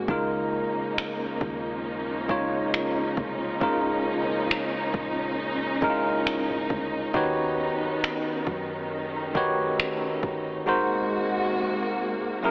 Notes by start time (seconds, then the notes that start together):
Already playing: G#3 A#3 C4 G#4
0.08 C#2 C#3 F3 G#3 C#4 D#4 F4 A#4, kick
0.77 D#2
0.98 finger snap
1.41 D#2, kick
2.28 C#3 G#3 D#4 F4 C#5, kick
2.74 finger snap
3.17 C2, kick
3.60 C#2 C#3 G#3 D#4 F4 A#4, kick
4.29 A#1
4.51 finger snap
4.94 A#1, kick
5.81 C2 G#3 C#4 D#4 E4 A#4, kick
5.90 F4
6.27 finger snap
6.50 G#1
6.70 D2, kick
7.14 D#2 D#3 B3 D#4 F#4 G4 B4 C#5, kick
7.83 F#2
8.04 finger snap
8.47 F#2, kick
8.91 A3
9.34 D#3 D#4 F#4 G4 B4 C#5, kick
9.80 finger snap
10.23 G1, kick
10.66 C3 G#3 A#3 D#4 F#4 A#4 C5
12.43 C#3 F#3 C#4 E4 G#4 A#4